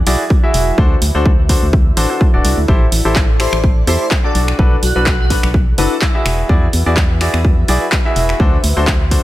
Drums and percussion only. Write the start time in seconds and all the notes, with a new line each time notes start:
0.07 open hi-hat
0.30 kick
0.54 open hi-hat
0.78 kick
1.02 open hi-hat
1.26 kick
1.49 kick, open hi-hat
1.73 kick
1.97 open hi-hat
2.21 kick
2.45 open hi-hat
2.68 kick
2.92 open hi-hat
3.16 kick, clap
3.40 finger snap, open hi-hat
3.53 finger snap
3.64 kick
3.87 open hi-hat
4.11 kick, clap
4.35 open hi-hat
4.48 finger snap
4.59 kick
4.83 open hi-hat
5.06 kick, clap
5.30 kick, open hi-hat
5.43 finger snap
5.54 kick
5.78 open hi-hat
6.01 kick, clap
6.26 finger snap, open hi-hat
6.49 kick
6.73 open hi-hat
6.97 kick, clap
7.21 finger snap, open hi-hat
7.34 finger snap
7.45 kick
7.68 open hi-hat
7.92 kick, clap
8.16 open hi-hat
8.29 finger snap
8.40 kick
8.64 open hi-hat
8.87 kick, clap
9.11 kick, open hi-hat